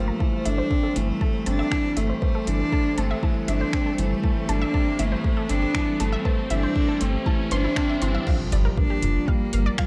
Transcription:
0.00 0.11 G1 medium
0.00 0.23 F3 medium
0.00 0.19 G3 medium
0.00 0.22 G3 medium
0.00 0.47 A3 loud
0.00 0.23 A#3 medium
0.00 0.23 D4 medium
0.00 0.21 G4 medium
0.00 9.87 C5 medium
0.00 0.21 F5 medium
0.00 riser medium
0.08 0.13 A#5 medium
0.20 0.44 E3 medium
0.20 9.87 G3 medium
0.20 0.25 A5 medium
0.20 kick loud
0.34 9.87 G4 medium
0.46 0.61 G1 medium
0.46 0.70 A3 medium
0.46 0.98 D4 loud
0.46 0.53 E5 medium
0.46 closed hi-hat medium
0.58 0.66 C5 medium
0.71 0.95 C4 medium
0.71 kick loud
0.80 8.27 A4 medium
0.80 0.88 A4 medium
0.96 1.12 G1 medium
0.96 1.10 E3 medium
0.96 1.48 A3 loud
0.96 closed hi-hat medium
1.21 1.45 A3 medium
1.21 1.29 A5 medium
1.21 kick loud
1.46 1.62 G1 medium
1.46 1.70 C4 medium
1.46 1.99 D4 loud
1.46 1.51 A5 medium
1.46 closed hi-hat medium
1.59 1.62 E5 loud
1.59 mid tom medium
1.72 1.86 E3 medium
1.72 1.77 A5 medium
1.72 finger snap medium
1.72 kick medium
1.97 2.12 G1 medium
1.97 2.21 A3 medium
1.97 2.49 A3 loud
1.97 2.04 E5 medium
1.97 closed hi-hat medium
2.10 2.17 C5 medium
2.22 2.36 C5 medium
2.22 kick loud
2.35 2.40 A4 medium
2.47 2.63 G1 medium
2.47 2.71 E3 medium
2.47 2.99 D4 loud
2.47 closed hi-hat medium
2.72 2.96 A3 medium
2.72 2.80 A5 medium
2.72 kick medium
2.97 3.13 G1 medium
2.97 3.49 A3 loud
2.97 3.12 C4 medium
2.97 3.03 A5 medium
2.97 closed hi-hat medium
3.11 3.13 E5 loud
3.23 3.47 E3 medium
3.23 3.28 A5 medium
3.23 kick medium
3.48 3.63 G1 medium
3.48 3.72 A3 medium
3.48 4.00 D4 loud
3.48 3.56 E5 medium
3.48 closed hi-hat medium
3.61 3.68 C5 medium
3.73 3.97 C4 medium
3.73 finger snap medium
3.73 kick loud
3.86 3.91 A4 medium
3.98 4.14 G1 medium
3.98 4.22 E3 medium
3.98 4.50 A3 loud
3.98 closed hi-hat medium
4.24 4.48 E3 medium
4.24 4.31 A5 medium
4.24 kick loud
4.49 4.64 G1 loud
4.49 4.73 A3 medium
4.49 5.01 D4 loud
4.49 4.54 A5 medium
4.49 closed hi-hat medium
4.62 4.65 E5 loud
4.74 4.98 C4 medium
4.74 4.79 A5 medium
4.74 kick loud
4.99 5.15 G1 medium
4.99 5.14 E3 medium
4.99 5.51 A3 loud
4.99 5.07 E5 medium
4.99 closed hi-hat medium
5.12 5.19 C5 medium
5.24 5.48 A3 medium
5.24 kick loud
5.37 5.42 A4 medium
5.49 5.65 G1 medium
5.49 5.74 C4 medium
5.49 6.02 D4 loud
5.49 closed hi-hat medium
5.62 mid tom medium
5.75 5.89 E3 medium
5.75 5.82 A5 medium
5.75 finger snap medium
5.75 kick loud
6.00 6.16 G1 medium
6.00 6.24 A3 medium
6.00 6.52 A3 loud
6.00 6.05 A5 medium
6.00 closed hi-hat medium
6.12 6.16 E5 loud
6.25 6.40 C5 medium
6.25 6.30 A5 medium
6.25 kick loud
6.50 6.66 G1 medium
6.50 6.75 E3 medium
6.50 7.02 D4 loud
6.50 6.58 E5 medium
6.50 closed hi-hat medium
6.63 6.71 C5 medium
6.75 7.00 A3 medium
6.75 kick loud
6.88 6.93 A4 medium
7.01 7.17 G1 medium
7.01 7.53 A3 loud
7.01 7.15 C4 medium
7.01 closed hi-hat medium
7.26 7.50 E3 medium
7.26 7.34 A5 medium
7.26 kick loud
7.51 7.67 G1 medium
7.51 8.03 D4 loud
7.51 7.76 C5 medium
7.51 7.57 C6 loud
7.51 closed hi-hat medium
7.64 7.69 E4 medium
7.76 8.01 C4 loud
7.76 7.84 A5 medium
7.76 finger snap medium
7.76 kick loud
7.89 7.94 E5 medium
8.02 8.17 G1 medium
8.02 8.26 E3 medium
8.02 8.27 C4 medium
8.02 8.05 C6 medium
8.02 closed hi-hat medium
8.15 8.20 E5 medium
8.27 8.51 F3 medium
8.27 8.32 F5 medium
8.27 kick loud
8.27 crash loud
8.27 impact medium
8.52 8.68 G1 loud
8.52 8.76 G3 medium
8.52 8.60 D5 medium
8.52 closed hi-hat medium
8.65 8.72 A#4 medium
8.65 9.87 F5 medium
8.77 9.02 A#3 medium
8.77 9.30 D4 loud
8.77 kick loud
8.90 8.95 G4 medium
8.96 9.87 A#5 medium
9.02 9.18 F1 medium
9.02 9.17 F3 medium
9.02 closed hi-hat medium
9.02 mid tom medium
9.28 9.52 G3 medium
9.28 9.80 A#3 loud
9.28 9.35 F5 medium
9.28 kick loud
9.53 9.69 G1 medium
9.53 9.77 A#3 medium
9.53 9.58 F5 medium
9.53 closed hi-hat medium
9.66 9.69 D5 loud
9.78 9.87 F3 medium
9.78 9.87 G3 medium
9.78 9.83 F5 medium
9.78 finger snap medium
9.78 kick loud

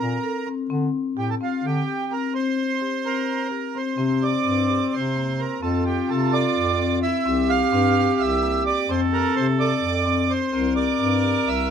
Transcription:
0.00 0.19 A#2 medium
0.00 0.49 A#4 medium
0.24 0.39 A4 medium
0.47 0.63 C4 medium
0.70 0.89 D3 medium
0.70 1.02 C4 medium
1.17 1.36 A2 medium
1.17 1.33 G4 medium
1.17 1.30 G4 medium
1.30 1.35 A4 medium
1.41 1.72 C4 medium
1.41 1.66 F4 medium
1.64 1.83 D3 medium
1.64 2.13 G4 medium
1.88 2.03 G4 medium
2.11 2.27 C4 medium
2.11 2.33 A#4 medium
2.34 2.66 C4 medium
2.34 3.48 C5 medium
2.81 2.97 G4 medium
3.05 3.36 C4 medium
3.05 3.77 A#4 medium
3.51 3.67 G4 medium
3.75 3.91 C4 medium
3.75 4.24 C5 medium
3.98 4.36 C3 medium
3.98 4.14 C4 medium
3.98 5.58 C4 medium
4.22 4.37 G4 medium
4.22 4.95 D5 medium
4.45 4.83 G2 medium
4.45 4.61 C4 medium
4.69 5.01 G4 medium
4.92 5.49 C3 medium
4.92 5.41 C5 medium
5.16 5.47 A#3 medium
5.40 5.61 A#4 medium
5.62 6.00 F2 medium
5.62 5.78 C4 medium
5.62 7.06 F4 medium
5.62 5.84 A4 medium
5.85 6.01 G4 medium
5.85 6.10 G4 medium
6.09 6.47 C3 medium
6.09 6.25 C4 medium
6.09 6.33 A4 medium
6.32 6.64 A4 medium
6.32 6.99 D5 medium
6.56 7.13 F2 medium
6.79 7.11 C4 medium
7.02 7.29 E4 medium
7.02 7.51 E5 medium
7.26 7.64 C2 medium
7.26 7.42 C4 medium
7.26 8.92 G4 loud
7.49 7.65 G4 medium
7.49 8.22 F5 loud
7.72 8.10 G2 medium
7.72 7.89 C4 medium
7.96 8.28 G4 medium
8.19 8.77 C2 medium
8.19 8.63 E5 medium
8.43 8.74 A#3 medium
8.67 8.91 D5 medium
8.89 9.27 F2 medium
8.89 9.05 C4 medium
8.89 10.30 A4 loud
8.89 9.01 C5 medium
9.12 9.28 G4 medium
9.12 9.35 A#4 medium
9.36 9.74 C3 medium
9.36 9.52 C4 medium
9.36 9.47 C5 medium
9.59 9.91 A4 medium
9.59 10.32 D5 medium
9.82 10.40 F2 medium
10.06 10.38 C4 medium
10.30 10.74 C5 medium
10.52 10.91 C2 medium
10.52 10.69 C4 medium
10.52 11.70 A#4 loud
10.76 10.92 G4 medium
10.76 11.49 D5 medium
10.99 11.38 G2 medium
10.99 11.16 C4 medium
11.24 11.55 G4 medium
11.46 11.70 C2 medium
11.46 11.69 E5 medium

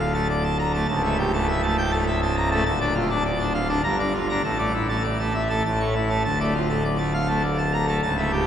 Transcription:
0.00 0.84 D1 medium
0.00 0.84 D2 medium
0.00 0.13 F5 medium
0.14 0.27 A3 medium
0.14 0.27 A5 medium
0.30 0.43 D5 medium
0.44 0.57 A5 medium
0.59 0.72 A#5 loud
0.74 0.87 A3 medium
0.74 0.87 A5 medium
0.89 2.62 C#1 loud
0.89 2.62 C#2 loud
0.89 1.02 A5 medium
1.04 1.17 A3 medium
1.04 1.17 E5 medium
1.18 1.32 G4 medium
1.33 1.46 A3 medium
1.33 1.47 A5 medium
1.48 1.61 E5 medium
1.63 1.76 A3 medium
1.63 1.76 A5 medium
1.78 1.91 G5 medium
1.92 2.05 A3 medium
1.92 2.05 A5 medium
2.07 2.20 E5 medium
2.22 2.35 A5 medium
2.37 2.49 A#5 loud
2.52 2.64 A3 medium
2.52 2.64 A5 medium
2.66 3.80 D1 loud
2.66 3.80 D2 loud
2.66 2.79 A5 loud
2.81 2.94 D4 medium
2.81 2.94 D5 medium
2.95 3.08 F4 medium
3.10 3.23 D4 medium
3.10 3.23 A5 medium
3.25 3.38 D5 medium
3.39 3.53 D4 medium
3.39 3.53 A5 medium
3.54 3.68 F5 medium
3.69 3.82 D4 medium
3.69 3.82 A5 medium
3.83 4.42 G1 loud
3.83 4.42 G2 loud
3.83 3.97 A#5 loud
3.99 4.12 D4 medium
3.99 4.12 D5 medium
4.14 4.27 F4 medium
4.29 4.42 D4 medium
4.29 4.42 A#5 medium
4.44 5.61 A1 medium
4.44 5.61 A2 medium
4.44 4.57 A5 loud
4.59 4.72 A3 medium
4.59 4.72 D5 medium
4.73 4.87 E4 medium
4.89 5.03 A3 medium
4.89 5.03 A5 medium
5.04 5.17 D5 medium
5.19 5.33 A3 medium
5.19 5.33 A5 medium
5.34 5.48 E5 medium
5.50 5.63 A3 medium
5.50 5.63 A5 medium
5.66 6.24 A1 medium
5.66 6.24 A2 medium
5.66 5.79 A5 loud
5.80 5.94 A3 medium
5.80 5.93 C#5 medium
5.95 6.09 E4 medium
6.10 6.23 A3 medium
6.10 6.23 A5 medium
6.25 8.00 D1 medium
6.25 8.00 D2 medium
6.25 6.38 A5 medium
6.40 6.53 A3 medium
6.40 6.53 D5 medium
6.54 6.68 F4 medium
6.69 6.83 A3 medium
6.69 6.83 A5 medium
6.84 6.98 D5 medium
6.98 7.13 A3 medium
6.98 7.12 A5 medium
7.14 7.28 F5 medium
7.28 7.42 A3 medium
7.28 7.42 A5 medium
7.43 7.57 D5 medium
7.58 7.72 A5 medium
7.73 7.86 A#5 medium
7.87 8.00 A3 medium
7.87 8.01 A5 medium
8.02 8.47 C#1 medium
8.02 8.47 C#2 medium
8.02 8.16 A5 medium
8.17 8.31 A3 medium
8.17 8.31 E5 medium
8.32 8.45 G4 medium

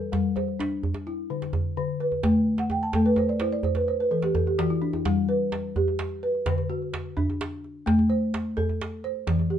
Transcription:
0.00 0.59 A4 medium
0.00 0.36 B4 medium
0.12 0.59 G3 medium
0.12 djembe slap medium
0.12 djembe bass medium
0.36 1.06 C5 medium
0.36 djembe tone medium
0.48 djembe slap soft
0.59 0.83 D4 medium
0.59 djembe slap medium
0.72 djembe slap soft
0.83 djembe bass medium
0.94 djembe slap soft
0.94 djembe tone soft
1.07 1.77 E4 medium
1.30 1.76 D3 medium
1.30 djembe slap soft
1.42 djembe slap soft
1.53 djembe tone medium
1.53 djembe bass medium
1.77 2.24 D3 medium
2.00 2.47 B4 medium
2.00 djembe slap soft
2.12 djembe tone soft
2.23 2.70 A3 medium
2.23 djembe slap medium
2.23 djembe bass medium
2.58 2.81 F#5 medium
2.58 djembe slap medium
2.70 2.93 G5 medium
2.70 djembe tone medium
2.82 3.04 A5 medium
2.82 djembe slap soft
2.93 3.41 A3 medium
2.93 3.16 A4 medium
2.93 djembe slap medium
2.93 djembe bass medium
3.05 3.28 B4 medium
3.05 djembe slap soft
3.16 3.39 C5 medium
3.16 djembe tone medium
3.29 3.51 D5 medium
3.40 3.64 E4 medium
3.40 3.63 C5 medium
3.40 djembe slap medium
3.53 3.74 D5 medium
3.63 3.86 C5 medium
3.63 djembe bass medium
3.75 3.98 B4 medium
3.75 djembe slap medium
3.75 djembe tone medium
3.88 4.10 C5 medium
4.00 4.22 B4 medium
4.11 4.57 E3 medium
4.11 4.33 A4 medium
4.22 4.45 G4 medium
4.22 djembe slap medium
4.35 4.57 A4 medium
4.35 djembe tone medium
4.35 djembe bass medium
4.47 4.69 G4 medium
4.58 5.05 E3 medium
4.58 4.80 F#4 medium
4.58 djembe slap medium
4.70 4.92 E4 medium
4.82 5.03 D4 medium
4.82 djembe slap soft
4.93 5.15 E4 medium
4.93 djembe tone medium
5.05 5.52 G3 medium
5.05 djembe slap medium
5.05 djembe bass medium
5.29 5.99 B4 medium
5.29 djembe slap soft
5.52 djembe slap medium
5.76 6.23 G4 medium
5.76 djembe bass medium
5.88 djembe tone medium
5.99 djembe slap medium
6.23 6.70 B4 medium
6.35 djembe slap soft
6.46 6.93 D3 medium
6.46 djembe slap medium
6.46 djembe bass medium
6.58 djembe tone medium
6.70 7.40 F#4 medium
6.82 djembe slap soft
6.94 djembe slap medium
7.17 7.64 D4 medium
7.17 djembe slap soft
7.17 djembe bass medium
7.30 djembe tone medium
7.41 djembe slap medium
7.64 djembe slap soft
7.86 8.33 A3 medium
7.86 djembe slap medium
7.86 djembe bass medium
7.99 djembe tone medium
8.10 8.80 C5 medium
8.34 djembe slap medium
8.57 9.04 A4 medium
8.57 djembe bass medium
8.69 djembe tone medium
8.81 djembe slap medium
9.04 9.51 C5 medium
9.16 djembe slap soft
9.27 9.59 E3 medium
9.27 djembe slap medium
9.27 djembe bass medium
9.39 djembe tone medium
9.50 9.59 G4 medium

